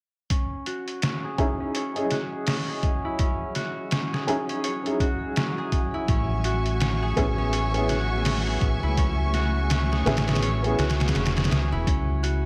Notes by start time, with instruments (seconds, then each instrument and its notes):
0.30 synth texture F#3 F#4, harp C#4, kick, closed hi-hat
0.66 harp F#4, closed hi-hat
0.88 closed hi-hat
1.02 harp C#4, snare, closed hi-hat
1.24 harp G#4
1.38 felt piano C#4 D#4 E4 G#4, kick, closed hi-hat
1.60 harp C#4
1.75 harp C#5, closed hi-hat
1.95 felt piano C#4 E4 G#4 D#5, closed hi-hat
2.11 harp F#4, snare, closed hi-hat
2.47 harp C#4, snare, open hi-hat
2.69 harp G#4
2.83 kick, closed hi-hat
3.05 harp E4
3.19 harp C#4, kick, closed hi-hat
3.55 harp F#4, snare, closed hi-hat
3.91 harp C#4, snare, closed hi-hat
4.13 harp G#4, snare
4.27 felt piano C#4 D#4 E4 G#4, closed hi-hat
4.49 harp C#4, closed hi-hat
4.64 harp C#5, closed hi-hat
4.84 felt piano C#4 D#4 E4 G#4, closed hi-hat
5.00 harp F#4, kick, closed hi-hat
5.36 harp C#4, snare, closed hi-hat
5.58 harp G#4
5.72 kick, closed hi-hat
5.94 harp E4
6.08 fingered electric bass A1, string section A3 E5 G#5 C#6, harp C#4, kick, closed hi-hat
6.44 harp F#4, closed hi-hat
6.66 closed hi-hat
6.80 harp C#4, snare, closed hi-hat
7.02 harp G#4
7.16 fingered electric bass A1, felt piano B3 C#4 E4 G#4, kick, closed hi-hat
7.38 harp C#4
7.53 harp C#5, closed hi-hat
7.74 felt piano B3 C#4 E4 G#4, closed hi-hat
7.89 harp F#4, snare, closed hi-hat
8.25 harp C#4, snare, open hi-hat
8.47 harp G#4
8.61 fingered electric bass A1, kick, closed hi-hat
8.83 fingered electric bass C#2, harp E4
8.97 harp C#4, kick, closed hi-hat
9.34 harp F#4, snare, closed hi-hat
9.70 harp C#4, snare, closed hi-hat
9.92 harp G#4, snare
10.06 fingered electric bass A1, felt piano B3 C#4 E4 G#4, snare, closed hi-hat
10.17 snare, closed hi-hat
10.28 harp C#4, snare, closed hi-hat
10.35 snare, closed hi-hat
10.42 harp C#5, closed hi-hat
10.63 felt piano B3 C#4 E4 G#4, closed hi-hat
10.79 fingered electric bass C#2, harp F#4, snare, closed hi-hat
10.90 snare, closed hi-hat
11.00 snare, closed hi-hat
11.08 snare, closed hi-hat
11.15 fingered electric bass E1, harp C#4, snare, closed hi-hat
11.26 snare, closed hi-hat
11.36 harp G#4, snare, closed hi-hat
11.44 snare, closed hi-hat
11.51 fingered electric bass C#2, snare, closed hi-hat
11.72 fingered electric bass E1, harp E4
11.87 fingered electric bass C#2, synth texture E3 E4, harp C#4, kick, closed hi-hat
12.23 harp F#4, closed hi-hat